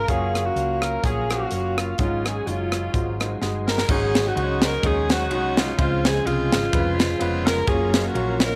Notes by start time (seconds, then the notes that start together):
Already playing: F5
0.08 F#1 F#3 A#3 C#4 F4 F#4 G#4 A#4 C#5 F5, kick, closed hi-hat
0.35 cross-stick, closed hi-hat
0.45 A#3 C#4 F#4
0.56 C#2 A#3 F4 F#4 C#5, closed hi-hat
0.82 A#4, cross-stick, closed hi-hat
1.03 A#1 A#3 C#4 F4 F#4 G#4 C#5 F5, kick, closed hi-hat
1.29 A#3 C#4 F4 F#4 C5, cross-stick, closed hi-hat
1.51 F#1 A#3 F4 F#4 C#5, closed hi-hat
1.77 F4, cross-stick, closed hi-hat
1.98 G#1 G#2 F#3 G#3 C#4 D#4 F4 F#4 G#4 C#5, kick, closed hi-hat
2.24 G#4, cross-stick, closed hi-hat
2.46 F#1 F#3 G#3 C#4 D#4 F4 C#5, closed hi-hat
2.72 cross-stick, closed hi-hat
2.93 G#1 G#2 F#3 G#3 A#3 D#4 F#4 G#4 C5, kick, closed hi-hat
3.00 C5
3.20 G#3 D#4 F#4 C5, cross-stick, closed hi-hat
3.41 G1 G#3 D#4 F#4 G#4, snare
3.67 A#4, snare
3.78 snare
3.89 G#1 G#2 F#3 G#3 C4 C#4 D#4 F#4 G#4 C#5, kick, crash
3.95 C#4
4.15 snare, ride bell
4.26 C#4 D#4 F#4
4.35 C#2 G#3 C#4 D#4 F#4 C5, ride bell
4.43 C#5
4.62 A#4, snare, ride bell
4.83 D#2 G#3 C#4 D#4 F#4 G#4 C#5, kick, ride bell
5.09 C#4 D#4 F#4, snare, ride bell
5.30 C2 G#3 C#4 D#4 F#4 C#5, ride bell
5.57 F4, snare, ride bell
5.78 C#2 C#3 F3 G#3 C4 F4 G#4 C5, kick, ride bell
6.05 G#4, snare, ride bell
6.25 C2 C#3 G#3 C4 F4 G#4, ride bell
6.52 G#1, snare, ride bell
6.73 F1 C#3 F3 G#3 E4 G#4 B4, kick, ride bell
6.80 F4
6.99 snare, ride bell
7.19 F1 G#3 B3 C#4 F4 B4, ride bell
7.46 A#4, snare, ride bell
7.67 F#1 F#3 A#3 C#4 F4 G#4 A#4 C#5 F5, kick, ride bell
7.94 snare, ride bell
8.04 A#3 C#4 F#4
8.13 A#1 F#3 A#3 C#4 F4 C#5, ride bell
8.40 A#4, snare, ride bell